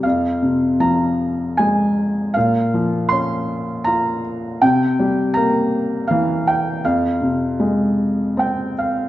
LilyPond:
<<
  \new Staff \with { instrumentName = "Felt piano" } { \time 3/4 \key f \minor \tempo 4 = 79 f''4 bes''4 aes''4 | f''4 c'''4 bes''4 | g''4 bes''4 f''8 g''8 | f''2 g''8 f''8 | }
  \new Staff \with { instrumentName = "Felt piano" } { \clef bass \time 3/4 \key f \minor f,8 c8 f4 aes4 | bes,8 f8 des'4 f'4 | c8 g8 bes4 e4 | f,8 c8 aes4 c'4 | }
>>